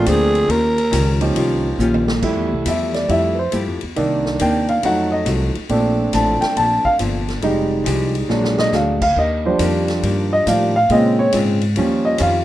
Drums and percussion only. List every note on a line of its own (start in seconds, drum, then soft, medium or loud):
0.06 hi-hat pedal medium
0.06 ride medium
0.35 ride soft
0.50 ride medium
0.78 ride medium
0.93 hi-hat pedal medium
0.93 ride medium
1.21 ride medium
1.36 ride medium
1.80 hi-hat pedal medium
1.94 high tom medium
2.08 snare medium
2.22 kick medium
2.22 crash medium
2.66 hi-hat pedal medium
2.66 ride medium
2.94 snare soft
2.94 ride soft
3.09 ride medium
3.52 hi-hat pedal soft
3.52 ride medium
3.81 ride soft
3.96 ride medium
4.26 snare medium
4.39 hi-hat pedal medium
4.39 ride medium
4.69 ride soft
4.83 ride medium
5.26 hi-hat pedal medium
5.26 ride medium
5.55 ride soft
5.69 ride medium
6.13 hi-hat pedal medium
6.13 ride medium
6.42 snare medium
6.42 ride soft
6.57 ride medium
6.85 kick medium
6.99 hi-hat pedal medium
6.99 ride medium
7.28 snare soft
7.28 ride soft
7.42 ride medium
7.86 hi-hat pedal medium
7.86 ride medium
8.15 ride soft
8.30 snare medium
8.44 snare medium
8.58 snare loud
8.72 snare medium
8.72 hi-hat pedal medium
9.02 kick medium
9.02 crash medium
9.59 hi-hat pedal medium
9.59 ride medium
9.88 snare medium
9.88 ride soft
10.03 ride medium
10.47 hi-hat pedal medium
10.47 ride medium
10.90 ride medium
11.32 hi-hat pedal medium
11.32 ride medium
11.61 ride medium
11.76 ride medium
12.18 hi-hat pedal medium
12.18 ride medium